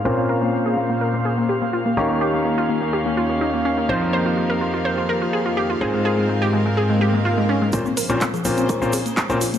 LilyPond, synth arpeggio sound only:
\new Staff \with { instrumentName = "Synth arpeggio sound" } { \time 4/4 \key bes \dorian \tempo 4 = 125 bes'16 bes16 bes'16 bes16 bes16 aes'16 bes16 bes16 bes'16 bes16 aes'16 bes16 g'16 bes16 f'16 bes16 | g'16 bes16 g'16 bes16 bes16 f'16 bes16 bes16 g'16 bes16 f'16 bes16 ees'16 bes16 des'16 bes16 | c''16 f'16 c''16 f'16 f'16 bes'16 f'16 f'16 c''16 f'16 bes'16 f'16 aes'16 f'16 g'16 f'16 | aes'16 aes16 aes'16 aes16 aes16 g'16 aes16 aes16 aes'16 aes16 g'16 aes16 f'16 aes16 des'16 aes16 |
bes'16 bes16 bes'16 bes16 bes16 aes'16 bes16 bes16 bes'16 bes16 aes'16 bes16 g'16 bes16 f'16 bes16 | }